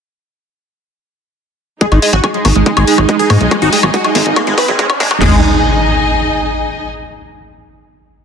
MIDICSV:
0, 0, Header, 1, 10, 480
1, 0, Start_track
1, 0, Tempo, 425532
1, 2043, Time_signature, 4, 2, 24, 8
1, 9304, End_track
2, 0, Start_track
2, 0, Title_t, "Synth arpeggio sound"
2, 0, Program_c, 0, 84
2, 2283, Note_on_c, 0, 75, 92
2, 2379, Note_off_c, 0, 75, 0
2, 2403, Note_on_c, 0, 80, 94
2, 2479, Note_off_c, 0, 80, 0
2, 2523, Note_on_c, 0, 80, 79
2, 2599, Note_off_c, 0, 80, 0
2, 3242, Note_on_c, 0, 83, 89
2, 3422, Note_off_c, 0, 83, 0
2, 4202, Note_on_c, 0, 80, 97
2, 4563, Note_off_c, 0, 80, 0
2, 9304, End_track
3, 0, Start_track
3, 0, Title_t, "String section"
3, 0, Program_c, 1, 48
3, 2043, Note_on_c, 1, 63, 89
3, 2319, Note_on_c, 1, 80, 75
3, 2399, Note_on_c, 1, 68, 76
3, 2649, Note_on_c, 1, 75, 76
3, 5870, Note_off_c, 1, 63, 0
3, 5883, Note_off_c, 1, 68, 0
3, 5883, Note_off_c, 1, 75, 0
3, 5883, Note_off_c, 1, 80, 0
3, 5883, Note_on_c, 1, 63, 77
3, 5955, Note_on_c, 1, 68, 76
3, 6027, Note_on_c, 1, 75, 76
3, 6099, Note_on_c, 1, 80, 77
3, 7758, Note_off_c, 1, 63, 0
3, 7758, Note_off_c, 1, 68, 0
3, 7758, Note_off_c, 1, 75, 0
3, 7758, Note_off_c, 1, 80, 0
3, 9304, End_track
4, 0, Start_track
4, 0, Title_t, "Ambient pad"
4, 0, Program_c, 2, 92
4, 2043, Note_on_c, 2, 56, 76
4, 2043, Note_on_c, 2, 63, 76
4, 5931, Note_off_c, 2, 56, 0
4, 5931, Note_off_c, 2, 63, 0
4, 9304, End_track
5, 0, Start_track
5, 0, Title_t, "Acid bass"
5, 0, Program_c, 3, 38
5, 2042, Note_on_c, 3, 56, 83
5, 2100, Note_off_c, 3, 56, 0
5, 2162, Note_on_c, 3, 63, 76
5, 2249, Note_off_c, 3, 63, 0
5, 2402, Note_on_c, 3, 54, 77
5, 2437, Note_off_c, 3, 54, 0
5, 2522, Note_on_c, 3, 56, 82
5, 2557, Note_off_c, 3, 56, 0
5, 2762, Note_on_c, 3, 58, 75
5, 2797, Note_off_c, 3, 58, 0
5, 3002, Note_on_c, 3, 56, 82
5, 3060, Note_off_c, 3, 56, 0
5, 3122, Note_on_c, 3, 56, 77
5, 3209, Note_off_c, 3, 56, 0
5, 3362, Note_on_c, 3, 54, 78
5, 3397, Note_off_c, 3, 54, 0
5, 3483, Note_on_c, 3, 56, 83
5, 3569, Note_off_c, 3, 56, 0
5, 3722, Note_on_c, 3, 58, 76
5, 3757, Note_off_c, 3, 58, 0
5, 3962, Note_on_c, 3, 56, 82
5, 4020, Note_off_c, 3, 56, 0
5, 4082, Note_on_c, 3, 63, 76
5, 4169, Note_off_c, 3, 63, 0
5, 4322, Note_on_c, 3, 54, 78
5, 4357, Note_off_c, 3, 54, 0
5, 4442, Note_on_c, 3, 56, 81
5, 4477, Note_off_c, 3, 56, 0
5, 4682, Note_on_c, 3, 58, 77
5, 4717, Note_off_c, 3, 58, 0
5, 4922, Note_on_c, 3, 56, 84
5, 4980, Note_off_c, 3, 56, 0
5, 5043, Note_on_c, 3, 56, 80
5, 5129, Note_off_c, 3, 56, 0
5, 5283, Note_on_c, 3, 54, 78
5, 5317, Note_off_c, 3, 54, 0
5, 5402, Note_on_c, 3, 56, 85
5, 5489, Note_off_c, 3, 56, 0
5, 5643, Note_on_c, 3, 58, 78
5, 5677, Note_off_c, 3, 58, 0
5, 5883, Note_on_c, 3, 56, 96
5, 6106, Note_off_c, 3, 56, 0
5, 9304, End_track
6, 0, Start_track
6, 0, Title_t, "Supersaw synth"
6, 0, Program_c, 4, 81
6, 2043, Note_on_c, 4, 68, 98
6, 2117, Note_off_c, 4, 68, 0
6, 2163, Note_on_c, 4, 56, 63
6, 2238, Note_off_c, 4, 56, 0
6, 2283, Note_on_c, 4, 56, 64
6, 2357, Note_off_c, 4, 56, 0
6, 2403, Note_on_c, 4, 66, 93
6, 2478, Note_off_c, 4, 66, 0
6, 2523, Note_on_c, 4, 56, 64
6, 2598, Note_off_c, 4, 56, 0
6, 2644, Note_on_c, 4, 56, 67
6, 2718, Note_off_c, 4, 56, 0
6, 2883, Note_on_c, 4, 56, 66
6, 2958, Note_off_c, 4, 56, 0
6, 3003, Note_on_c, 4, 56, 66
6, 3078, Note_off_c, 4, 56, 0
6, 3123, Note_on_c, 4, 68, 93
6, 3197, Note_off_c, 4, 68, 0
6, 3243, Note_on_c, 4, 56, 63
6, 3317, Note_off_c, 4, 56, 0
6, 3362, Note_on_c, 4, 56, 63
6, 3437, Note_off_c, 4, 56, 0
6, 3482, Note_on_c, 4, 56, 64
6, 3557, Note_off_c, 4, 56, 0
6, 3602, Note_on_c, 4, 68, 97
6, 3677, Note_off_c, 4, 68, 0
6, 3723, Note_on_c, 4, 56, 66
6, 3797, Note_off_c, 4, 56, 0
6, 3843, Note_on_c, 4, 56, 64
6, 3917, Note_off_c, 4, 56, 0
6, 3962, Note_on_c, 4, 56, 67
6, 4037, Note_off_c, 4, 56, 0
6, 4082, Note_on_c, 4, 66, 90
6, 4157, Note_off_c, 4, 66, 0
6, 4203, Note_on_c, 4, 56, 65
6, 4277, Note_off_c, 4, 56, 0
6, 4323, Note_on_c, 4, 56, 67
6, 4397, Note_off_c, 4, 56, 0
6, 4443, Note_on_c, 4, 66, 95
6, 4517, Note_off_c, 4, 66, 0
6, 4562, Note_on_c, 4, 56, 67
6, 4637, Note_off_c, 4, 56, 0
6, 4682, Note_on_c, 4, 56, 62
6, 4757, Note_off_c, 4, 56, 0
6, 4923, Note_on_c, 4, 56, 65
6, 4997, Note_off_c, 4, 56, 0
6, 5043, Note_on_c, 4, 56, 67
6, 5117, Note_off_c, 4, 56, 0
6, 5163, Note_on_c, 4, 71, 95
6, 5237, Note_off_c, 4, 71, 0
6, 5282, Note_on_c, 4, 56, 65
6, 5357, Note_off_c, 4, 56, 0
6, 5403, Note_on_c, 4, 56, 66
6, 5477, Note_off_c, 4, 56, 0
6, 5643, Note_on_c, 4, 56, 69
6, 5717, Note_off_c, 4, 56, 0
6, 5763, Note_on_c, 4, 56, 63
6, 5838, Note_off_c, 4, 56, 0
6, 5883, Note_on_c, 4, 68, 96
6, 6061, Note_off_c, 4, 68, 0
6, 9304, End_track
7, 0, Start_track
7, 0, Title_t, "Analog synth bass"
7, 0, Program_c, 5, 38
7, 2163, Note_on_c, 5, 32, 72
7, 2243, Note_off_c, 5, 32, 0
7, 2403, Note_on_c, 5, 32, 81
7, 2483, Note_off_c, 5, 32, 0
7, 2763, Note_on_c, 5, 32, 92
7, 2843, Note_off_c, 5, 32, 0
7, 2883, Note_on_c, 5, 32, 83
7, 2963, Note_off_c, 5, 32, 0
7, 3123, Note_on_c, 5, 32, 82
7, 3203, Note_off_c, 5, 32, 0
7, 3362, Note_on_c, 5, 32, 81
7, 3443, Note_off_c, 5, 32, 0
7, 3723, Note_on_c, 5, 44, 95
7, 3803, Note_off_c, 5, 44, 0
7, 3843, Note_on_c, 5, 35, 82
7, 3923, Note_off_c, 5, 35, 0
7, 4083, Note_on_c, 5, 32, 78
7, 4163, Note_off_c, 5, 32, 0
7, 4322, Note_on_c, 5, 32, 84
7, 4403, Note_off_c, 5, 32, 0
7, 4683, Note_on_c, 5, 32, 98
7, 4763, Note_off_c, 5, 32, 0
7, 4802, Note_on_c, 5, 32, 83
7, 4883, Note_off_c, 5, 32, 0
7, 5043, Note_on_c, 5, 32, 79
7, 5123, Note_off_c, 5, 32, 0
7, 5283, Note_on_c, 5, 32, 83
7, 5363, Note_off_c, 5, 32, 0
7, 5643, Note_on_c, 5, 32, 96
7, 5723, Note_off_c, 5, 32, 0
7, 5763, Note_on_c, 5, 32, 85
7, 5843, Note_off_c, 5, 32, 0
7, 5883, Note_on_c, 5, 32, 93
7, 6106, Note_off_c, 5, 32, 0
7, 9304, End_track
8, 0, Start_track
8, 0, Title_t, "Impact"
8, 0, Program_c, 6, 103
8, 5883, Note_on_c, 6, 60, 66
8, 7803, Note_off_c, 6, 60, 0
8, 9304, End_track
9, 0, Start_track
9, 0, Title_t, "Riser"
9, 0, Program_c, 7, 103
9, 2042, Note_on_c, 7, 60, 81
9, 5883, Note_off_c, 7, 60, 0
9, 9304, End_track
10, 0, Start_track
10, 0, Title_t, "Drums"
10, 2042, Note_on_c, 9, 42, 97
10, 2043, Note_on_c, 9, 36, 109
10, 2155, Note_off_c, 9, 36, 0
10, 2155, Note_off_c, 9, 42, 0
10, 2162, Note_on_c, 9, 42, 41
10, 2162, Note_on_c, 9, 76, 38
10, 2275, Note_off_c, 9, 42, 0
10, 2275, Note_off_c, 9, 76, 0
10, 2282, Note_on_c, 9, 46, 101
10, 2395, Note_off_c, 9, 46, 0
10, 2403, Note_on_c, 9, 42, 41
10, 2515, Note_off_c, 9, 42, 0
10, 2523, Note_on_c, 9, 36, 112
10, 2523, Note_on_c, 9, 42, 96
10, 2523, Note_on_c, 9, 76, 72
10, 2635, Note_off_c, 9, 36, 0
10, 2635, Note_off_c, 9, 42, 0
10, 2635, Note_off_c, 9, 76, 0
10, 2643, Note_on_c, 9, 42, 41
10, 2755, Note_off_c, 9, 42, 0
10, 2762, Note_on_c, 9, 46, 107
10, 2762, Note_on_c, 9, 76, 38
10, 2875, Note_off_c, 9, 46, 0
10, 2875, Note_off_c, 9, 76, 0
10, 2882, Note_on_c, 9, 42, 40
10, 2995, Note_off_c, 9, 42, 0
10, 3002, Note_on_c, 9, 42, 97
10, 3003, Note_on_c, 9, 36, 118
10, 3115, Note_off_c, 9, 36, 0
10, 3115, Note_off_c, 9, 42, 0
10, 3122, Note_on_c, 9, 42, 41
10, 3122, Note_on_c, 9, 76, 74
10, 3235, Note_off_c, 9, 42, 0
10, 3235, Note_off_c, 9, 76, 0
10, 3242, Note_on_c, 9, 46, 104
10, 3355, Note_off_c, 9, 46, 0
10, 3362, Note_on_c, 9, 42, 42
10, 3362, Note_on_c, 9, 76, 39
10, 3475, Note_off_c, 9, 42, 0
10, 3475, Note_off_c, 9, 76, 0
10, 3482, Note_on_c, 9, 36, 117
10, 3482, Note_on_c, 9, 42, 100
10, 3595, Note_off_c, 9, 36, 0
10, 3595, Note_off_c, 9, 42, 0
10, 3602, Note_on_c, 9, 42, 44
10, 3715, Note_off_c, 9, 42, 0
10, 3722, Note_on_c, 9, 46, 103
10, 3722, Note_on_c, 9, 76, 75
10, 3835, Note_off_c, 9, 46, 0
10, 3835, Note_off_c, 9, 76, 0
10, 3842, Note_on_c, 9, 42, 42
10, 3955, Note_off_c, 9, 42, 0
10, 3962, Note_on_c, 9, 36, 99
10, 3963, Note_on_c, 9, 42, 99
10, 3963, Note_on_c, 9, 76, 40
10, 4075, Note_off_c, 9, 36, 0
10, 4075, Note_off_c, 9, 42, 0
10, 4075, Note_off_c, 9, 76, 0
10, 4082, Note_on_c, 9, 42, 41
10, 4195, Note_off_c, 9, 42, 0
10, 4202, Note_on_c, 9, 46, 112
10, 4315, Note_off_c, 9, 46, 0
10, 4322, Note_on_c, 9, 76, 75
10, 4435, Note_off_c, 9, 76, 0
10, 4442, Note_on_c, 9, 36, 101
10, 4442, Note_on_c, 9, 42, 93
10, 4555, Note_off_c, 9, 36, 0
10, 4555, Note_off_c, 9, 42, 0
10, 4562, Note_on_c, 9, 42, 39
10, 4562, Note_on_c, 9, 76, 36
10, 4675, Note_off_c, 9, 42, 0
10, 4675, Note_off_c, 9, 76, 0
10, 4682, Note_on_c, 9, 46, 111
10, 4795, Note_off_c, 9, 46, 0
10, 4802, Note_on_c, 9, 42, 40
10, 4915, Note_off_c, 9, 42, 0
10, 4922, Note_on_c, 9, 36, 108
10, 4923, Note_on_c, 9, 42, 96
10, 4923, Note_on_c, 9, 76, 75
10, 5035, Note_off_c, 9, 36, 0
10, 5035, Note_off_c, 9, 42, 0
10, 5035, Note_off_c, 9, 76, 0
10, 5042, Note_on_c, 9, 42, 41
10, 5155, Note_off_c, 9, 42, 0
10, 5163, Note_on_c, 9, 36, 106
10, 5163, Note_on_c, 9, 46, 112
10, 5163, Note_on_c, 9, 76, 36
10, 5275, Note_off_c, 9, 36, 0
10, 5275, Note_off_c, 9, 46, 0
10, 5275, Note_off_c, 9, 76, 0
10, 5283, Note_on_c, 9, 42, 41
10, 5395, Note_off_c, 9, 42, 0
10, 5403, Note_on_c, 9, 36, 107
10, 5403, Note_on_c, 9, 42, 100
10, 5515, Note_off_c, 9, 36, 0
10, 5515, Note_off_c, 9, 42, 0
10, 5523, Note_on_c, 9, 36, 96
10, 5523, Note_on_c, 9, 42, 41
10, 5523, Note_on_c, 9, 76, 80
10, 5635, Note_off_c, 9, 36, 0
10, 5635, Note_off_c, 9, 42, 0
10, 5635, Note_off_c, 9, 76, 0
10, 5643, Note_on_c, 9, 36, 104
10, 5643, Note_on_c, 9, 46, 110
10, 5755, Note_off_c, 9, 46, 0
10, 5756, Note_off_c, 9, 36, 0
10, 5763, Note_on_c, 9, 36, 96
10, 5763, Note_on_c, 9, 42, 39
10, 5763, Note_on_c, 9, 76, 37
10, 5875, Note_off_c, 9, 42, 0
10, 5875, Note_off_c, 9, 76, 0
10, 5876, Note_off_c, 9, 36, 0
10, 5883, Note_on_c, 9, 38, 107
10, 5883, Note_on_c, 9, 43, 104
10, 5883, Note_on_c, 9, 49, 87
10, 5996, Note_off_c, 9, 38, 0
10, 5996, Note_off_c, 9, 43, 0
10, 5996, Note_off_c, 9, 49, 0
10, 9304, End_track
0, 0, End_of_file